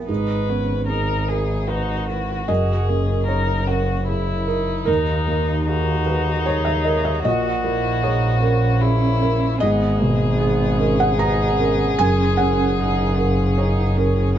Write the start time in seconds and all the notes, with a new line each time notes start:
Already playing: E4 G#4 A#4 E5 G#5
0.07 G#1 G#2 D#4 G#4 B4
0.49 B3 C#4
0.87 D#4 G#4 A#4
1.28 G#4 A#4
1.68 D#4 F#4 B4
2.08 E4 F#4 B4
2.48 F#1 F#2 F#4 G#4 D#5
2.89 A#3 C#4
3.26 D#4 G#4 A#4 C#5
3.67 C#4 F#4 A#4
4.08 E4 G#4
4.47 D#4 A#4
4.85 D#2 D#4 A#4
5.27 A#3
5.66 D#4 F#4 G#4
6.06 G#4 B4
6.46 G#4 C#5
6.65 E5
6.84 A#4 D#5
7.05 E5
7.24 A#1 A#2 F#4 D#5
7.64 A#3 E4
8.03 D#4 G#4 C#5
8.42 C#4 A#4
8.81 E4 G#4
9.22 A#4
9.60 G#1 G#2 B3 G#4 D#5
9.99 B2 A#3
10.38 B3 G#4
10.78 C#4 A#4
11.00 F#5
11.18 D#4 B4 A#5
11.58 C#4 A#4
11.99 F#1 F#2 G#5
12.37 C#4 F#5
12.77 D#4 G#4
13.16 C#4 A#4
13.57 D#4 C#5
13.97 C#4 A#4